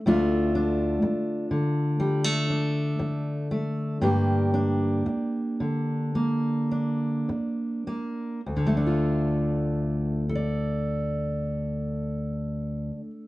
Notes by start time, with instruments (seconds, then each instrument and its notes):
0.06 steel-string acoustic guitar D2 A3 D4 F4
0.55 steel-string acoustic guitar D4
1.02 muted steel-string acoustic guitar stroke
1.51 steel-string acoustic guitar D3
2.00 steel-string acoustic guitar G3
2.24 steel-string acoustic guitar A3
2.50 steel-string acoustic guitar D4
2.99 muted steel-string acoustic guitar stroke
3.51 steel-string acoustic guitar A3
4.01 steel-string acoustic guitar G2 A#3 D4 G4
4.54 steel-string acoustic guitar D4
5.06 muted steel-string acoustic guitar stroke
5.60 steel-string acoustic guitar D3
6.15 steel-string acoustic guitar A#3
6.71 steel-string acoustic guitar D4
7.29 muted steel-string acoustic guitar stroke
7.87 steel-string acoustic guitar A#3
8.46 steel-string acoustic guitar D2
8.57 steel-string acoustic guitar D3
8.67 steel-string acoustic guitar A3
8.77 steel-string acoustic guitar D4
8.86 steel-string acoustic guitar F4
10.29 steel-string acoustic guitar A4
10.35 steel-string acoustic guitar D5